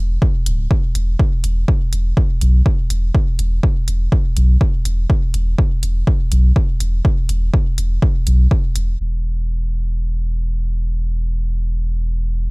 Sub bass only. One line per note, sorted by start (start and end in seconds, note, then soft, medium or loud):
0.00 0.18 E1 medium
0.46 0.67 D1 loud
0.95 1.15 E1 loud
1.44 1.64 E1 loud
1.93 2.13 E1 medium
2.41 2.62 B1 medium
2.90 3.11 E1 medium
3.39 3.59 E1 loud
3.88 4.08 E1 medium
4.37 4.57 B1 medium
4.85 5.06 E1 medium
5.34 5.54 E1 loud
5.83 6.03 E1 medium
6.32 6.52 B1 medium
6.80 7.01 E1 medium
7.29 7.50 E1 loud
7.78 7.98 E1 medium
8.27 8.47 B1 medium
8.76 8.96 E1 medium
9.00 12.51 E1 medium